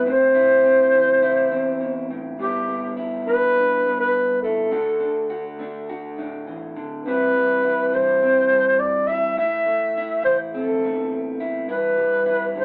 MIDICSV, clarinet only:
0, 0, Header, 1, 2, 480
1, 0, Start_track
1, 0, Key_signature, 1, "major"
1, 0, Tempo, 580271
1, 68, Time_signature, 4, 2, 24, 8
1, 10462, End_track
2, 0, Start_track
2, 0, Title_t, "Clarinet"
2, 0, Program_c, 0, 71
2, 90, Note_on_c, 0, 72, 97
2, 1724, Note_off_c, 0, 72, 0
2, 1983, Note_on_c, 0, 67, 99
2, 2431, Note_off_c, 0, 67, 0
2, 2703, Note_on_c, 0, 71, 101
2, 3274, Note_off_c, 0, 71, 0
2, 3309, Note_on_c, 0, 71, 90
2, 3641, Note_off_c, 0, 71, 0
2, 3656, Note_on_c, 0, 69, 80
2, 4588, Note_off_c, 0, 69, 0
2, 5835, Note_on_c, 0, 71, 89
2, 6567, Note_on_c, 0, 72, 98
2, 6579, Note_off_c, 0, 71, 0
2, 7270, Note_on_c, 0, 74, 87
2, 7283, Note_off_c, 0, 72, 0
2, 7505, Note_on_c, 0, 76, 90
2, 7517, Note_off_c, 0, 74, 0
2, 7746, Note_off_c, 0, 76, 0
2, 7763, Note_on_c, 0, 76, 95
2, 8442, Note_off_c, 0, 76, 0
2, 8474, Note_on_c, 0, 72, 82
2, 8581, Note_off_c, 0, 72, 0
2, 8701, Note_on_c, 0, 69, 70
2, 9392, Note_off_c, 0, 69, 0
2, 9671, Note_on_c, 0, 71, 81
2, 10358, Note_off_c, 0, 71, 0
2, 10412, Note_on_c, 0, 72, 100
2, 10462, Note_off_c, 0, 72, 0
2, 10462, End_track
0, 0, End_of_file